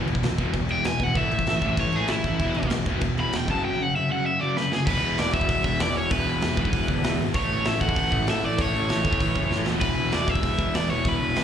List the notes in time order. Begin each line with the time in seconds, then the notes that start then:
Already playing: E2 B2 E3
0.08 E1 E2 B2, crash
0.15 kick
0.23 E1 E2 B2, snare, crash
0.38 E1 E2 B2 E3, kick, crash
0.54 E1 E2 B2, kick, crash
0.69 E2 B2 E3 G5, crash
0.84 E1 E2 B2 G#5, snare, crash
1.00 E1 E2 B2 E3 F#5, kick, crash
1.15 A1 A2 E3 A3 E5, kick, crash
1.31 A1 A2 E3, crash
1.39 kick
1.47 A1 A2 E3, snare, crash
1.61 A1 A2 E3 A3, kick, crash
1.77 A1 A2 E3 C#5, kick, crash
1.92 A1 A2 E3 A3 G#4, crash
2.08 A1 A2 E3 E4, snare, crash
2.24 A1 A2 E3 A3, kick, crash
2.39 E1 E2 B2 E3, kick, crash
2.54 E1 E2 B2, crash
2.63 kick
2.70 E1 E2 B2, snare, crash
2.86 E1 E2 B2 E3, kick, crash
3.01 E1 E2 B2, kick, crash
3.18 E2 B2 E3 B5, crash
3.33 E1 E2 B2, snare, crash
3.37 G5
3.48 F#1 F#2 C#3 F#3 A5, kick, crash
3.64 F#2 C#3 F#3 G5
3.80 F#2 C#3 F#5
3.95 F#2 C#3 E5
4.11 F#2 C#3 F#3 F#5
4.26 F#2 C#3 E5
4.41 F#2 C#3 F#3 D5
4.56 F#2 C#3 F#3 B4, snare
4.72 F#2 C#3 G#4, snare
4.85 E1 E2 B2 E3 B4, kick, crash
4.90 B2 E3
5.05 E1
5.18 E1 D5, snare, open hi-hat
5.33 E1 E2 B2 E3 E5, kick
5.41 kick
5.49 E1, kick, open hi-hat
5.64 E1 B2 E3 E5, kick
5.68 E2
5.80 E2 B2 E3 D5, snare, open hi-hat
5.96 E1 C#5
6.10 E1 E2 B2 E3 B4, kick, open hi-hat
6.28 E1
6.42 E1, snare, open hi-hat
6.56 B1 E2 B2 E3, kick
6.65 kick
6.73 E1, kick, open hi-hat
6.88 D2 E2 B2 E3, kick
7.03 E2 B2 E3, snare, open hi-hat
7.19 G#1
7.34 A1 A2 E3 A3 C#5, kick, open hi-hat
7.51 A1
7.65 A1 E5, snare, open hi-hat
7.81 A1 A2 E3 A3 F#5, kick
7.89 kick
7.96 A1, kick, open hi-hat
8.12 A1 A2 E3 A3, kick
8.27 A2 E3 A3 E5, snare, open hi-hat
8.44 A1 D5
8.58 A1 A2 E3 A3 C#5, kick, open hi-hat
8.75 A1
8.89 A1, snare, open hi-hat
9.05 E2 E3 A3, kick
9.09 A2, kick
9.20 A1, kick, open hi-hat
9.35 F#1 A2 E3 A3, kick
9.51 A2 E3, snare
9.55 A3
9.66 E1 E2 B2 E3, snare
9.70 E3
9.81 E1 B4, kick, open hi-hat, crash
9.98 E1
10.12 E1 E2 B2 E3 D5, snare, open hi-hat
10.28 E1 E5, kick
10.35 kick
10.43 E1 E2 B2, kick, open hi-hat
10.47 E3
10.58 E1 E2 B2 E3, kick
10.74 E2 D5, snare, open hi-hat
10.89 E1 E2 B2 E3 C#5
10.93 E3
11.05 E1 B4, kick, open hi-hat
11.21 E1
11.35 E1 E2 B2 E3, snare, open hi-hat